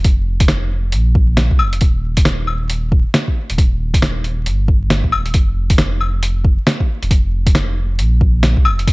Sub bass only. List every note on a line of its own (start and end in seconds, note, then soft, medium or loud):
0.00 0.94 F1 medium
0.93 1.49 A#1 medium
1.51 1.61 C2 medium
1.60 1.80 F1 medium
1.81 3.04 D#1 medium
3.50 4.48 D#1 medium
4.46 5.02 G1 loud
5.04 5.14 A#1 medium
5.12 5.33 D#1 medium
5.34 6.57 F1 loud
7.02 8.00 F1 medium
7.99 8.55 A#1 loud
8.57 8.67 C2 medium
8.65 8.86 F1 loud
8.87 8.93 D#1 medium